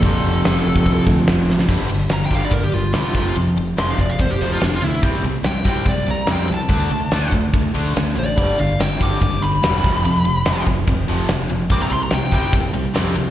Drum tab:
CC |----------------|x---------------|----------------|----------------|
RD |----------------|--x-x-x-x-x-x-x-|x-x-x-x-x-x-x-x-|x-x-x-x-x-x-x-x-|
HH |o-o-o-o-o-o-o---|----------------|----------------|----------------|
SD |----o-------o-oo|-o--o-------o---|----o-------o---|-o--o-------o---|
BD |o------oo-o-----|o-----o-o-----o-|------o-o-------|o-----o-o-------|

CC |----------------|----------------|----------------|----------------|
RD |x-x-x-x-x-x-x-x-|x-x-x-x-x-x-x-x-|x-x-x-x-x-x-x-x-|x-x-x-x-x-x-x-x-|
HH |----------------|----------------|----------------|----------------|
SD |----o-------o---|----o-------o---|----o-------o---|-o--o-------o---|
BD |o-----o-o-------|o-----o-o-----o-|------o-o-------|o-----o-o-------|